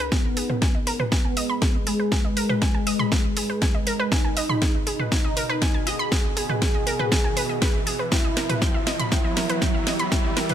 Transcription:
0.12 ambient pad G#3 G#4 B4 D#5, analog synth lead B3, synth arpeggio sound G#4, kick, snare, riser
0.37 synth arpeggio sound G#4, open hi-hat
0.50 synth arpeggio sound B4, mid tom
0.62 synth arpeggio sound G#5, kick, snare
0.75 synth arpeggio sound D#5
0.87 synth arpeggio sound A#4, open hi-hat
1.00 synth arpeggio sound B4, mid tom
1.12 analog synth lead B3, synth arpeggio sound G#5, kick, snare
1.25 synth arpeggio sound G#5
1.37 synth arpeggio sound D#5, open hi-hat
1.49 synth arpeggio sound B5
1.62 synth arpeggio sound G#4, kick, snare
1.87 analog synth lead G#3, synth arpeggio sound G#4, open hi-hat
2.00 synth arpeggio sound B4
2.12 synth arpeggio sound G#5, kick, snare
2.25 synth arpeggio sound D#5
2.37 synth arpeggio sound A#4, open hi-hat
2.49 synth arpeggio sound B4, mid tom
2.62 synth arpeggio sound G#5, kick, snare
2.74 synth arpeggio sound G#5
2.87 synth arpeggio sound D#5, open hi-hat
2.99 synth arpeggio sound B5, mid tom
3.12 synth arpeggio sound G#4, kick, snare
3.37 synth arpeggio sound G#4, open hi-hat
3.50 synth arpeggio sound B4
3.62 synth arpeggio sound G#5, kick, snare
3.74 synth arpeggio sound D#5
3.87 synth arpeggio sound A#4, open hi-hat
3.99 synth arpeggio sound B4
4.12 ambient pad B2 B3 F#4, analog synth lead D#4, synth arpeggio sound G#5, kick, snare
4.24 synth arpeggio sound G#5
4.37 synth arpeggio sound D#5, open hi-hat
4.49 synth arpeggio sound B5, mid tom
4.62 synth arpeggio sound G#4, kick, snare
4.87 synth arpeggio sound G#4, open hi-hat
4.99 synth arpeggio sound B4, mid tom
5.12 analog synth lead D#4, synth arpeggio sound G#5, kick, snare
5.24 synth arpeggio sound D#5
5.37 synth arpeggio sound A#4, open hi-hat
5.49 synth arpeggio sound B4
5.62 synth arpeggio sound G#5, kick, snare
5.74 synth arpeggio sound G#5
5.87 analog synth lead G#4, synth arpeggio sound D#5, open hi-hat
5.99 synth arpeggio sound B5
6.12 synth arpeggio sound G#4, kick, snare
6.37 synth arpeggio sound G#4, open hi-hat
6.49 synth arpeggio sound B4, mid tom
6.62 synth arpeggio sound G#5, kick, snare
6.74 synth arpeggio sound D#5
6.87 synth arpeggio sound A#4, open hi-hat
6.99 synth arpeggio sound B4, mid tom
7.12 synth arpeggio sound G#5, kick, snare
7.24 synth arpeggio sound G#5
7.37 synth arpeggio sound B4, open hi-hat
7.49 synth arpeggio sound D#5
7.62 synth arpeggio sound B4, kick, snare
7.87 synth arpeggio sound G#4, open hi-hat
7.99 synth arpeggio sound B4
8.12 ambient pad E3 G4 E5, analog synth lead E4, synth arpeggio sound G5, kick, snare, closed hi-hat
8.24 synth arpeggio sound D#5
8.37 synth arpeggio sound A#4, snare, open hi-hat
8.49 synth arpeggio sound B4, closed hi-hat, mid tom
8.62 synth arpeggio sound G5, kick, snare, closed hi-hat
8.74 synth arpeggio sound E5
8.87 synth arpeggio sound D#5, snare, open hi-hat
8.99 synth arpeggio sound B5, closed hi-hat, mid tom
9.12 analog synth lead E4, synth arpeggio sound G5, kick, snare, closed hi-hat
9.24 synth arpeggio sound D#5
9.37 synth arpeggio sound A#4, snare, open hi-hat
9.49 synth arpeggio sound B4, closed hi-hat
9.62 synth arpeggio sound G5, kick, snare, closed hi-hat
9.74 synth arpeggio sound E5
9.87 synth arpeggio sound D#5, snare, open hi-hat
9.99 synth arpeggio sound B5, closed hi-hat
10.12 analog synth lead E4, synth arpeggio sound G5, kick, snare, closed hi-hat
10.25 synth arpeggio sound D#5
10.37 synth arpeggio sound A#4, snare, open hi-hat
10.49 synth arpeggio sound B4, closed hi-hat, mid tom

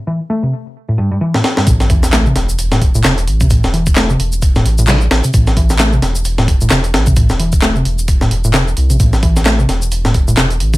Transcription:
0.07 picked electric bass E3
0.30 picked electric bass A3
0.43 picked electric bass C3
0.88 picked electric bass A2
0.98 picked electric bass G2
1.11 picked electric bass G2
1.21 picked electric bass E3
1.34 picked electric bass A2, snare
1.44 snare
1.57 picked electric bass G2, snare
1.67 sub bass A1, picked electric bass A2, kick, closed hi-hat, sub drop, shaker
1.80 snare, shaker
1.90 picked electric bass E3, kick, closed hi-hat
2.03 snare, shaker
2.13 picked electric bass A3, snare, clap, closed hi-hat, shaker
2.26 picked electric bass C3, shaker
2.36 sub bass E1, snare, closed hi-hat
2.49 shaker
2.59 closed hi-hat, shaker
2.72 picked electric bass A2, snare, shaker
2.82 kick, closed hi-hat
2.95 picked electric bass A2, shaker
3.04 sub bass E1, picked electric bass C3, snare, clap, closed hi-hat, shaker
3.18 closed hi-hat, shaker
3.27 sub bass A1, closed hi-hat
3.41 picked electric bass C3, kick, shaker
3.50 picked electric bass A2, kick, closed hi-hat, shaker
3.64 sub bass E1, snare, shaker
3.73 picked electric bass E3, closed hi-hat
3.86 kick, shaker
3.96 picked electric bass A3, snare, clap, closed hi-hat, shaker
4.10 picked electric bass C3, shaker
4.19 sub bass E1, closed hi-hat
4.32 shaker
4.42 kick, closed hi-hat, shaker
4.55 picked electric bass A2, snare, shaker
4.65 sub bass A1, closed hi-hat
4.78 picked electric bass A2, shaker
4.88 picked electric bass C3, snare, clap, closed hi-hat, shaker
5.01 shaker
5.11 sub bass A1, snare, closed hi-hat
5.24 picked electric bass C3, closed hi-hat, shaker
5.33 sub bass A1, picked electric bass A2, kick, closed hi-hat, shaker
5.47 snare, shaker
5.57 picked electric bass E3, kick, closed hi-hat
5.69 snare, shaker
5.79 picked electric bass A3, snare, clap, closed hi-hat, shaker
5.92 picked electric bass C3, shaker
6.02 sub bass E1, snare, closed hi-hat
6.15 shaker
6.25 closed hi-hat, shaker
6.38 picked electric bass A2, snare, shaker
6.48 kick, closed hi-hat
6.61 picked electric bass A2, shaker
6.71 sub bass E1, picked electric bass C3, snare, clap, closed hi-hat, shaker
6.84 closed hi-hat, shaker
6.94 sub bass A1, snare, closed hi-hat
7.06 picked electric bass C3, kick, shaker
7.16 picked electric bass A2, kick, closed hi-hat, shaker
7.29 sub bass E1, snare, shaker
7.40 picked electric bass E3, closed hi-hat
7.52 kick, shaker
7.62 picked electric bass A3, snare, clap, closed hi-hat, shaker
7.76 picked electric bass C3, shaker
7.85 sub bass E1, closed hi-hat
7.99 shaker
8.08 kick, closed hi-hat, shaker
8.21 picked electric bass A2, snare, shaker
8.31 sub bass E1, closed hi-hat
8.44 picked electric bass A2, shaker
8.54 picked electric bass C3, snare, clap, closed hi-hat, shaker
8.68 shaker
8.77 sub bass C2, closed hi-hat
8.90 sub bass A1, picked electric bass C3, closed hi-hat, shaker
9.00 sub bass A1, picked electric bass A2, kick, closed hi-hat, shaker
9.13 snare, shaker
9.23 picked electric bass E3, kick, closed hi-hat
9.36 snare, shaker
9.46 picked electric bass A3, snare, clap, closed hi-hat, shaker
9.59 picked electric bass C3, shaker
9.69 sub bass E1, snare, closed hi-hat
9.82 shaker
9.92 closed hi-hat, shaker
10.05 picked electric bass A2, snare, shaker
10.14 kick, closed hi-hat
10.27 picked electric bass A2, shaker
10.37 sub bass E1, picked electric bass C3, snare, clap, closed hi-hat, shaker
10.50 closed hi-hat, shaker
10.60 sub bass A1, closed hi-hat
10.73 picked electric bass C3, kick, shaker

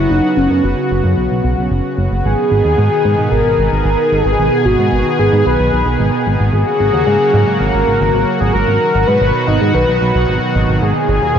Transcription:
Already playing: analog synth pad C#3 F#3 B3 F#4, soft synth lead E4
0.10 analog synth bass F#1, soft synth lead D#4
0.37 analog synth bass F#1, soft synth lead C#4
0.50 analog synth bass F#2
0.63 analog synth bass F#1, soft synth lead F#4
0.90 analog synth bass F#1
1.04 analog synth bass F#2
1.17 analog synth bass B1
1.31 analog synth bass B1
1.44 analog synth bass B1
1.57 analog synth bass B1
1.71 analog synth bass F#1
1.97 analog synth bass F#1
2.11 analog synth bass F#1
2.24 analog synth bass G#1, analog synth pad B2 D#3 B3 G#4, soft synth lead G#4
2.51 analog synth bass G#1
2.65 analog synth bass D#2
2.78 analog synth bass G#2
3.05 analog synth bass G#2
3.18 analog synth bass G#2
3.31 analog synth bass G#1, soft synth lead A#4
3.45 analog synth bass G#1
3.58 analog synth bass G#1
3.72 analog synth bass G#1
3.85 analog synth bass G#1
4.12 analog synth bass G#1, soft synth lead G#4
4.25 analog synth bass G#1
4.38 analog synth bass G#1
4.65 analog synth bass G#1, soft synth lead F#4
4.79 analog synth bass G#2
4.92 analog synth bass G#1
5.19 analog synth bass G#1, soft synth lead G#4
5.32 analog synth bass G#2
5.46 analog synth bass B1, soft synth lead B4
5.59 analog synth bass B1
5.72 analog synth bass B1
5.86 analog synth bass B1
5.99 analog synth bass G#1
6.26 analog synth bass G#1
6.39 analog synth bass G#1
6.53 analog synth bass G#1, analog synth pad C#3 F#3 A#3 F#4, soft synth lead G#4
6.80 analog synth bass G#1
6.93 analog synth bass D#2
7.07 analog synth bass G#2
7.33 analog synth bass G#2
7.47 analog synth bass G#2
7.60 analog synth bass G#1, soft synth lead A#4
7.74 analog synth bass G#1
7.87 analog synth bass G#1
8.00 analog synth bass G#1
8.14 analog synth bass G#1
8.40 analog synth bass G#1, soft synth lead G#4
8.53 analog synth bass G#1, soft synth lead A#4
8.67 analog synth bass G#1, analog synth pad B2 D#3
8.94 analog synth bass G#1
9.07 analog synth bass G#2, soft synth lead B4
9.21 analog synth bass G#1
9.47 analog synth bass G#1, soft synth lead D#4
9.61 analog synth bass G#2
9.74 analog synth bass B1, soft synth lead B4
9.88 analog synth bass B1
10.01 analog synth bass B1
10.15 analog synth bass B1
10.28 analog synth bass G#1
10.55 analog synth bass G#1
10.68 analog synth bass G#1
10.81 analog synth bass G#1, analog synth pad A#2 G#4, soft synth lead G#4
11.08 analog synth bass G#1
11.22 analog synth bass D#2
11.35 analog synth bass G#2

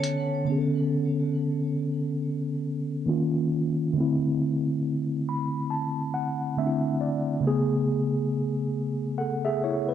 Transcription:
Already playing: tine electric piano D3 B3 C#4 A4, vibraphone C#5 A5
0.04 closed hi-hat
0.45 tine electric piano D3 B3
0.49 tine electric piano C#4 G#4
0.58 tine electric piano A4
3.06 tine electric piano D#3 A#3 C#4 F4
3.93 tine electric piano D3 A3
3.98 tine electric piano C4 E4
5.29 tine electric piano B5
5.70 tine electric piano A5
6.14 tine electric piano F#5
6.57 tine electric piano D3 A3 C4 D4 E5
6.67 tine electric piano E4
7.01 tine electric piano D5
7.40 tine electric piano C#3 A3
7.45 tine electric piano B3 G#4
9.18 tine electric piano A4 F#5
9.45 tine electric piano G#4 E5
9.64 tine electric piano E4 C#5
9.89 tine electric piano B4

